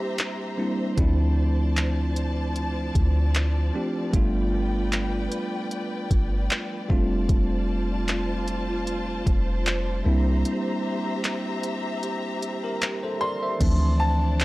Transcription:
0.00 0.54 G3 medium
0.00 0.54 A#3 medium
0.00 0.55 C4 medium
0.00 0.55 D4 medium
0.00 0.55 E4 medium
0.00 0.94 G4 medium
0.00 4.09 C5 medium
0.00 0.94 E5 medium
0.00 0.94 A#5 medium
0.18 clap loud
0.18 closed hi-hat medium
0.58 0.97 G3 medium
0.58 0.98 A#3 soft
0.58 0.97 C4 soft
0.58 0.98 D4 soft
0.58 0.98 E4 medium
0.96 2.91 D2 loud
0.96 3.69 F3 medium
0.96 6.86 F3 medium
0.96 3.70 A3 medium
0.96 3.70 C4 medium
0.96 3.71 D4 medium
0.96 3.71 E4 medium
0.96 10.02 D5 medium
0.96 4.11 A5 medium
0.96 kick loud
0.96 closed hi-hat medium
1.77 clap loud
1.77 closed hi-hat medium
2.16 closed hi-hat medium
2.56 closed hi-hat medium
2.95 3.71 D2 loud
2.95 kick medium
2.95 closed hi-hat medium
3.35 clap loud
3.35 closed hi-hat medium
3.74 4.13 F3 medium
3.74 4.12 A3 soft
3.74 4.14 C4 soft
3.74 4.14 D4 medium
3.74 4.14 G4 medium
4.12 5.28 G1 loud
4.12 6.85 G3 medium
4.12 6.86 A3 medium
4.12 6.86 B3 medium
4.12 6.86 D4 medium
4.12 6.87 F4 medium
4.12 6.87 B4 medium
4.12 6.87 G5 medium
4.12 kick loud
4.12 closed hi-hat medium
4.92 clap loud
4.92 closed hi-hat medium
5.32 closed hi-hat medium
5.71 closed hi-hat medium
6.11 6.49 G1 medium
6.11 kick medium
6.11 closed hi-hat medium
6.50 clap loud
6.50 closed hi-hat medium
6.88 7.28 F1 loud
6.88 10.01 G3 medium
6.88 10.01 A3 medium
6.88 10.02 C4 medium
6.88 10.02 D4 medium
6.88 10.02 F4 medium
6.88 13.57 C5 medium
6.88 10.02 A5 medium
6.88 kick medium
7.29 9.23 F1 loud
7.29 kick loud
7.29 closed hi-hat medium
8.08 clap loud
8.08 closed hi-hat medium
8.48 closed hi-hat medium
8.87 closed hi-hat medium
9.27 10.02 F1 loud
9.27 kick medium
9.27 closed hi-hat medium
9.66 clap loud
9.66 closed hi-hat medium
10.04 10.44 C2 medium
10.04 13.17 G3 medium
10.04 13.17 A#3 medium
10.04 13.17 C4 medium
10.04 13.18 D4 medium
10.04 13.18 E4 medium
10.04 13.57 G4 medium
10.04 13.57 E5 medium
10.04 13.57 A#5 medium
10.45 closed hi-hat medium
11.24 clap medium
11.24 closed hi-hat medium
11.63 closed hi-hat medium
12.03 closed hi-hat medium
12.42 closed hi-hat medium
12.64 13.01 G4 medium
12.64 13.01 A#4 medium
12.82 clap loud
12.82 closed hi-hat medium
13.03 13.21 A4 medium
13.03 13.20 C5 medium
13.21 13.42 A#4 medium
13.21 13.42 D5 medium
13.21 13.96 C6 loud
13.43 13.80 C5 medium
13.43 13.80 E5 medium
13.59 14.45 D2 loud
13.59 14.45 E3 medium
13.59 14.45 F3 medium
13.59 14.45 A3 medium
13.59 14.45 C4 medium
13.59 14.45 D4 medium
13.59 14.45 C5 medium
13.59 14.45 D5 medium
13.59 14.45 A5 medium
13.59 kick loud
13.59 closed hi-hat medium
13.59 crash medium
14.00 14.45 A5 loud
14.40 clap loud
14.40 closed hi-hat medium

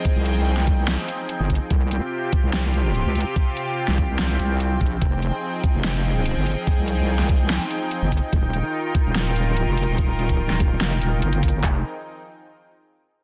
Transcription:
0.00 1.67 F3 medium
0.00 1.67 C4 medium
0.00 1.67 D#4 medium
0.00 1.67 G#4 medium
0.00 1.67 G5 medium
0.05 kick loud
0.05 closed hi-hat medium
0.16 0.97 C2 medium
0.26 closed hi-hat medium
0.57 snare soft
0.67 kick loud
0.67 closed hi-hat medium
0.88 snare loud
0.88 closed hi-hat medium
1.08 closed hi-hat medium
1.29 closed hi-hat medium
1.40 1.59 G1 loud
1.50 kick medium
1.50 closed hi-hat soft
1.55 closed hi-hat medium
1.70 2.00 C2 medium
1.70 4.98 C3 medium
1.70 8.29 C4 medium
1.70 4.98 F4 medium
1.70 4.98 G4 medium
1.70 11.60 G5 medium
1.70 kick loud
1.70 closed hi-hat medium
1.91 closed hi-hat soft
2.33 kick loud
2.33 closed hi-hat medium
2.43 3.04 C2 loud
2.53 snare loud
2.53 closed hi-hat medium
2.74 closed hi-hat medium
2.95 closed hi-hat medium
3.05 3.24 C#2 loud
3.15 closed hi-hat soft
3.21 closed hi-hat medium
3.36 kick loud
3.36 closed hi-hat medium
3.57 closed hi-hat soft
3.88 4.17 C2 loud
3.88 snare soft
3.98 kick loud
3.98 closed hi-hat medium
4.19 4.38 C2 loud
4.19 snare loud
4.19 closed hi-hat medium
4.39 4.79 C2 loud
4.39 closed hi-hat soft
4.60 closed hi-hat medium
4.81 5.00 A#1 medium
4.81 kick medium
4.81 closed hi-hat soft
4.86 closed hi-hat medium
5.02 5.31 F1 loud
5.02 8.29 F3 medium
5.02 11.60 D#4 medium
5.02 8.29 G#4 medium
5.02 kick loud
5.02 closed hi-hat medium
5.22 closed hi-hat soft
5.64 kick loud
5.64 closed hi-hat soft
5.74 6.35 F1 loud
5.84 snare loud
5.84 closed hi-hat medium
6.05 closed hi-hat soft
6.26 closed hi-hat medium
6.36 6.55 G1 loud
6.46 open hi-hat medium
6.52 closed hi-hat medium
6.67 kick loud
6.67 closed hi-hat medium
6.78 7.59 C2 medium
6.88 closed hi-hat soft
7.19 snare soft
7.29 kick loud
7.29 closed hi-hat soft
7.50 snare loud
7.50 closed hi-hat medium
7.71 closed hi-hat medium
7.91 closed hi-hat medium
8.02 8.21 G1 loud
8.12 kick medium
8.12 open hi-hat medium
8.17 closed hi-hat medium
8.33 8.62 D#1 loud
8.33 11.60 D#3 medium
8.33 11.60 F4 medium
8.33 11.60 A#4 medium
8.33 kick loud
8.33 closed hi-hat medium
8.53 closed hi-hat soft
8.95 kick loud
8.95 closed hi-hat medium
9.05 9.48 D#1 loud
9.15 snare loud
9.15 closed hi-hat medium
9.36 closed hi-hat medium
9.48 9.66 D1 loud
9.57 closed hi-hat medium
9.67 9.86 F1 loud
9.77 open hi-hat medium
9.83 closed hi-hat medium
9.88 10.31 D#1 loud
9.98 kick loud
9.98 closed hi-hat medium
10.19 closed hi-hat medium
10.29 10.48 D1 loud
10.29 kick medium
10.29 closed hi-hat soft
10.50 10.79 D#1 loud
10.50 snare soft
10.60 kick loud
10.60 closed hi-hat medium
10.81 11.00 F1 loud
10.81 snare loud
10.81 closed hi-hat medium
11.02 11.21 D#1 loud
11.02 closed hi-hat medium
11.22 11.62 G1 loud
11.22 closed hi-hat medium
11.33 closed hi-hat soft
11.43 kick medium
11.43 open hi-hat medium
11.48 closed hi-hat medium
11.64 11.83 F1 loud
11.64 11.83 F3 medium
11.64 11.83 C4 medium
11.64 11.83 D#4 medium
11.64 11.83 G#4 medium
11.64 11.83 G5 medium
11.64 kick loud
11.64 clap medium

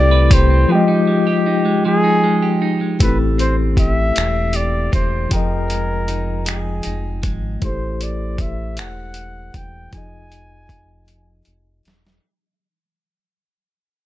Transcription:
0.00 0.66 C2 loud
0.00 0.65 A3 medium
0.00 0.76 A3 medium
0.00 0.50 C4 medium
0.00 0.68 C4 loud
0.00 0.66 E4 medium
0.00 0.30 G4 medium
0.00 0.66 G4 medium
0.00 0.67 A4 medium
0.00 0.10 B4 medium
0.00 0.34 D5 loud
0.11 0.77 B4 medium
0.31 1.10 G4 medium
0.31 0.73 C5 loud
0.31 kick medium
0.31 closed hi-hat medium
0.50 0.88 C4 medium
0.68 2.96 F3 medium
0.68 1.84 F3 medium
0.68 2.96 F4 medium
0.68 1.86 G4 medium
0.68 2.97 G5 medium
0.74 2.98 G#3 medium
0.74 2.99 D#5 medium
0.88 1.45 D#4 medium
1.07 1.64 G#3 medium
1.27 2.42 G4 medium
1.46 2.03 D#4 medium
1.65 2.23 G#3 medium
1.85 3.08 F3 medium
1.85 2.59 G#4 loud
2.04 2.61 D#4 medium
2.24 2.80 G#3 medium
2.42 3.77 G4 medium
2.62 3.08 D#4 medium
2.81 3.00 G#3 medium
2.99 4.12 A1 medium
2.99 5.26 A3 medium
2.99 5.31 A3 medium
2.99 5.27 E4 medium
2.99 5.28 G4 medium
2.99 3.18 B4 medium
2.99 kick loud
2.99 closed hi-hat medium
3.04 5.30 C4 medium
3.04 5.29 A4 medium
3.38 4.15 C4 soft
3.38 3.56 C5 medium
3.38 closed hi-hat soft
3.77 4.53 G4 medium
3.77 4.57 E5 loud
3.77 kick medium
3.77 closed hi-hat soft
4.15 4.89 E1 medium
4.15 4.92 C4 medium
4.15 finger snap medium
4.15 closed hi-hat medium
4.53 5.73 G4 medium
4.53 4.93 D5 medium
4.53 closed hi-hat soft
4.92 5.28 E1 medium
4.92 6.07 C4 medium
4.92 5.29 C5 medium
4.92 kick medium
4.92 closed hi-hat medium
5.29 6.81 F1 medium
5.29 7.57 F3 medium
5.29 7.62 F3 medium
5.29 7.58 F4 medium
5.29 7.59 G5 medium
5.29 kick loud
5.29 closed hi-hat medium
5.33 7.59 G#4 medium
5.33 6.43 A#4 loud
5.33 7.60 D#5 medium
5.70 6.45 G#3 soft
5.70 closed hi-hat soft
6.08 6.83 D#4 medium
6.08 closed hi-hat soft
6.46 7.21 G#3 soft
6.46 7.20 G#4 medium
6.46 finger snap medium
6.46 closed hi-hat medium
6.83 7.26 F1 medium
6.83 7.69 D#4 medium
6.83 closed hi-hat soft
7.23 7.58 G#1 medium
7.23 7.69 G#3 medium
7.23 kick medium
7.23 closed hi-hat soft
7.60 8.80 A1 loud
7.60 9.88 A3 medium
7.60 9.89 E4 medium
7.60 9.89 G4 medium
7.60 8.04 C5 medium
7.60 kick loud
7.60 closed hi-hat medium
7.65 9.90 A4 medium
7.65 9.91 C5 medium
8.01 8.42 D5 medium
8.01 closed hi-hat soft
8.38 8.80 E5 medium
8.38 kick medium
8.38 closed hi-hat soft
8.77 9.51 E1 medium
8.77 9.57 F#5 medium
8.77 finger snap loud
8.77 closed hi-hat medium
9.14 closed hi-hat soft
9.54 9.89 E1 medium
9.54 9.93 G5 medium
9.54 kick medium
9.54 closed hi-hat soft
9.91 11.43 F1 medium
9.91 12.18 F3 medium
9.91 12.20 D#4 soft
9.91 12.19 F4 soft
9.91 11.43 G#5 loud
9.91 kick medium
9.91 closed hi-hat medium
9.96 12.21 G#4 medium
9.96 12.22 D#5 medium
10.32 closed hi-hat soft
10.69 kick medium
10.69 closed hi-hat soft
11.08 closed hi-hat medium
11.45 11.82 F1 medium
11.45 closed hi-hat soft
11.85 12.20 E1 medium
11.85 snare medium
11.85 closed hi-hat soft
12.07 snare medium

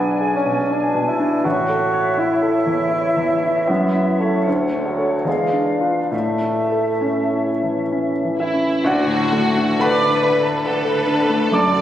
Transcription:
0.00 1.41 B1 medium
0.00 0.30 B3 medium
0.00 0.36 D4 soft
0.00 0.20 G#4 soft
0.00 0.11 D5 soft
0.00 1.42 D5 soft
0.00 1.42 G#5 soft
0.20 0.60 G#4 soft
0.35 0.73 C#4 medium
0.45 0.85 B2 soft
0.70 1.09 D4 soft
0.70 1.10 D4 medium
0.94 1.34 B2 soft
1.09 1.46 E4 medium
1.19 1.45 D4 soft
1.45 3.65 A1 medium
1.45 2.21 F#4 medium
1.45 5.28 C#5 medium
1.45 4.44 E5 soft
1.69 2.09 A4 soft
1.93 2.32 C#5 soft
2.17 2.57 E4 soft
2.17 3.70 E4 medium
2.42 2.82 A4 soft
2.66 3.07 E2 soft
2.93 3.33 E4 soft
3.17 3.58 E2 soft
3.43 3.69 E4 soft
3.68 4.45 F#2 medium
3.68 4.22 B3 medium
3.95 4.36 E4 soft
4.20 4.73 A3 medium
4.20 4.44 A4 soft
4.20 4.44 C#5 soft
4.46 5.24 D2 medium
4.46 5.26 F#5 soft
4.72 4.88 A3 soft
4.72 5.15 D4 soft
4.86 5.26 F#3 medium
4.98 5.23 A4 soft
4.98 5.23 C#5 soft
5.25 6.09 E2 soft
5.25 5.81 G#3 medium
5.25 6.70 D5 soft
5.25 6.11 F5 soft
5.52 6.00 D4 soft
5.81 6.09 F4 soft
5.81 6.09 B4 soft
6.11 8.81 A2 soft
6.11 7.90 A3 medium
6.11 8.44 E5 soft
6.41 6.90 E4 soft
6.72 7.20 A4 soft
7.01 7.50 C#4 soft
7.01 8.44 C#5 soft
7.32 7.81 E4 soft
7.62 8.11 E3 soft
7.92 8.42 C#4 soft
8.24 8.74 E3 soft
8.39 8.82 E4 medium
8.39 8.82 E4 soft
8.39 8.83 E4 soft
8.39 8.82 E5 soft
8.53 8.85 C#4 soft
8.84 11.48 D2 medium
8.84 9.70 D2 medium
8.84 9.70 D3 medium
8.84 9.80 F#4 medium
8.84 9.81 F#4 medium
8.84 9.78 F#4 medium
8.84 9.77 D5 medium
8.84 9.77 F#5 medium
9.06 9.47 A2 soft
9.32 9.71 A3 soft
9.57 9.93 D4 soft
9.80 10.56 D2 medium
9.80 10.56 D3 medium
9.80 10.15 A4 medium
9.80 10.65 B4 medium
9.80 10.61 B4 medium
9.80 10.66 B4 medium
9.80 10.21 D5 medium
9.80 10.62 F#5 medium
9.80 10.61 B5 medium
10.01 10.35 D4 medium
10.23 10.66 A4 medium
10.23 10.56 D5 medium
10.43 10.64 A5 medium
10.65 11.44 D2 medium
10.65 11.43 D3 medium
10.65 11.53 A4 medium
10.65 10.83 A4 soft
10.65 11.52 A4 medium
10.65 11.53 B4 medium
10.65 10.99 D5 medium
10.65 11.50 F#5 soft
10.65 11.49 A5 medium
10.85 11.21 A4 medium
11.06 11.43 D4 medium
11.29 11.52 A3 soft
11.52 11.81 F#1 medium
11.52 11.81 F#2 medium
11.52 11.81 A4 medium
11.52 11.81 D5 loud
11.52 11.81 D5 medium
11.52 11.81 A5 medium
11.52 11.81 D6 medium
11.73 11.81 F#3 soft

